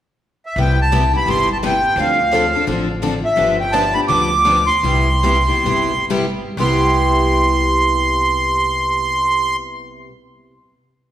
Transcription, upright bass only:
0.56 C2
1.26 G1
1.96 D2
2.67 A1
3.37 G1
4.09 D2
4.83 C2
5.64 G1
6.57 C2

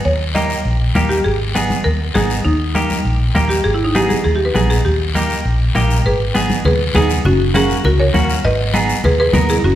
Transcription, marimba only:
0.05 C#5
0.35 D#5
1.09 G4
1.24 G#4
1.84 A#4
2.14 G#4
2.45 D#4
3.49 G4
3.64 G#4
3.74 E4
3.84 D#4
3.95 G4
4.09 G#4
4.24 G#4
4.35 G4
4.45 B4
4.55 G#4
4.70 G#4
4.85 G4
6.06 G#4 B4
6.65 G#4 B4
6.95 D#4 G#4
7.25 C#4 F#4
7.55 C#4 G#4
7.85 F#4 A#4
8.00 A#4 C#5
8.45 B4 D#5
9.05 G#4 B4
9.20 G#4 B4
9.50 E4 G#4
9.64 C#4 F#4

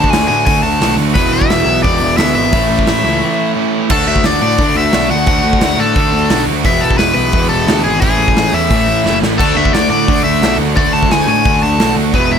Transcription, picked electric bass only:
Already playing: D2
0.14 D2
0.30 A2
0.47 D3
0.63 D2
0.80 B1
0.98 D2
1.16 E1
1.32 E1
1.49 E1
1.66 B1
1.85 E2
2.01 E1
2.18 D2
2.35 G#1
2.53 A1
2.70 A1
2.87 A1
3.05 C#2
3.91 D2
4.07 D2
4.25 D2
4.42 A2
4.59 D3
4.75 D2
4.93 B1
5.10 D2
5.27 D2
5.44 D2
5.61 D2
5.78 A2
5.96 D3
6.13 D2
6.30 B1
6.47 D2
6.65 E1
6.83 E1
6.99 E1
7.16 B1
7.34 E2
7.50 E1
7.67 D2
7.85 G#1
8.02 A1
8.19 A1
8.36 A1
8.53 E2
8.71 A2
8.87 A1
9.04 F#1
9.22 A1
9.40 D2
9.56 D2
9.73 D2
9.90 A2
10.09 D3
10.24 D2
10.42 B1
10.58 D2
10.77 D2
10.94 D2
11.10 D2
11.28 A2
11.46 D3
11.62 D2
11.79 B1
11.96 D2
12.14 E1
12.31 E1

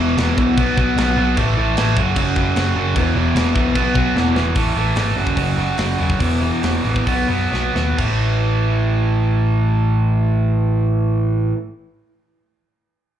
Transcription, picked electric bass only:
Already playing: E1
0.17 E1
0.38 B1
0.58 B1
0.78 B1
0.96 B1
1.17 B1
1.38 A1
1.57 A1
1.78 A1
1.97 F#1
2.16 F#1
2.36 F#1
2.56 F#1
2.76 F#1
2.96 E1
3.15 E1
3.35 E1
3.56 B1
3.76 B1
3.95 B1
4.16 E1
4.35 E1
4.56 A1
4.77 A1
4.96 G#1
5.17 F#1
5.37 F#1
5.58 F#1
5.79 F#1
6.00 E1
6.20 E1
6.63 E1
6.85 A1
7.07 B1
7.30 F#2
7.52 B1
7.75 D#2
7.99 A1

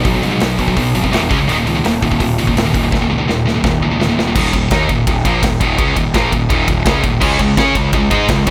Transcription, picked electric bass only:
0.05 B1
0.23 G#2
0.42 B1
0.59 B1
0.77 B1
0.95 G#1
1.12 E1
1.31 C#2
1.48 D#1
1.66 C#2
1.85 D#1
2.02 D#1
2.20 D#1
2.37 C#2
2.55 D#1
2.75 D#1
2.92 D#1
3.09 C#2
3.26 D#1
3.45 D#1
3.64 D#1
3.81 C#2
3.99 D#1
4.18 D#1
4.36 D#1
4.53 D#1
4.71 D#2
4.89 D#1
5.07 D#1
5.25 A#1
5.43 D#1
5.60 D#1
5.79 C#2
5.96 D#1
6.14 A#1
6.32 D#1
6.50 D#1
6.68 D#1
6.86 C#2
7.04 D#1
7.22 C#2
7.39 C#2
7.57 C#3
7.75 C#2
7.94 C#2
8.11 G#2
8.29 C#2
8.47 C#2

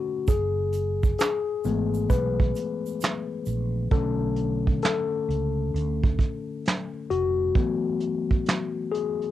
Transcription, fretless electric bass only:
0.28 F#1
1.65 G#1
2.10 B1
3.47 A#1
3.92 B1
5.29 C#2
5.74 D2
7.10 F1

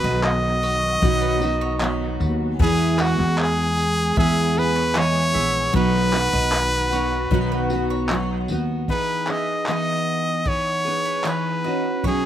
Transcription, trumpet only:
Already playing: B4
0.24 D#5
2.62 G#4
3.01 F#4
3.40 G#4
4.19 G#4
4.58 B4
4.98 C#5
5.76 B4
8.91 B4
9.30 D#5
9.69 D#5
10.48 C#5
11.27 B4
12.07 G#4

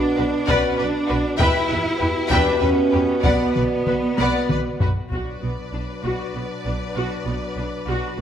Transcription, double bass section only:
0.19 B1
0.49 B1
0.79 B1
1.10 B1
1.40 E2
1.71 E2
2.01 E2
2.31 E2
2.62 E2
2.93 E2
3.25 B1
3.57 B1
3.88 B1
4.19 B1
4.51 B1
4.82 B1
5.13 B1
5.43 B1
5.73 B1
6.04 B1
6.34 B1
6.65 B1
6.96 B1
7.26 B1
7.57 B1
7.87 B1

